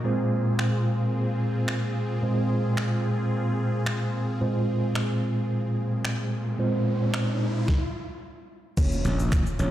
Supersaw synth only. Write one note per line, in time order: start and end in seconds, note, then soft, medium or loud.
0.00 7.64 A#2 medium
0.00 7.64 A#3 medium
0.04 7.64 C4 medium
0.04 7.64 F4 medium
0.04 7.64 G#4 medium
8.77 9.71 A#3 medium
8.77 9.71 C#4 medium
8.77 9.71 F4 medium